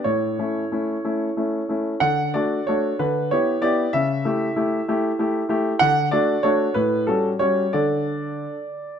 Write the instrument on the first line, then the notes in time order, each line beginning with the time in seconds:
grand piano
0.04 A2 C#5
0.39 A3 C#4 E4
0.72 A3 C#4 E4
1.04 A3 C#4 E4
1.37 A3 C#4 E4
1.69 A3 C#4 E4
2.00 D3 F#5
2.34 A3 D4 F#4 D5
2.67 A3 D4 F#4 C#5
2.99 D3 B4
3.31 B3 E4 G4 C#5
3.62 B3 E4 G4 D5
3.93 C#3 E5
4.25 A3 E4 G4
4.56 A3 E4 G4
4.88 A3 E4 G4
5.19 A3 E4 G4
5.49 A3 E4 G4
5.79 D3 F#5
6.11 A3 D4 F#4 D5
6.43 A3 D4 F#4 C#5
6.74 A2 B4
7.07 G3 C#4 F#4 A4
7.39 G3 C#4 F#4 C#5
7.73 D3 D4 A4 D5